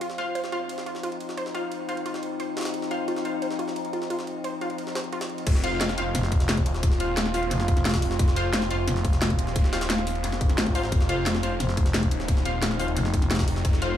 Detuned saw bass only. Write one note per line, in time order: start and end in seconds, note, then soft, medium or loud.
5.47 5.96 F1 loud
5.98 6.13 F1 loud
6.66 7.50 D#1 loud
8.02 8.18 F1 loud
8.19 8.69 F1 loud
8.71 8.86 F1 loud
9.39 10.23 D#1 loud
10.24 10.57 F1 loud
10.58 10.91 G#1 loud
10.92 11.42 F1 medium
11.43 11.59 F1 loud
12.11 12.95 D#1 loud
13.48 13.63 F1 loud
13.65 13.97 F1 loud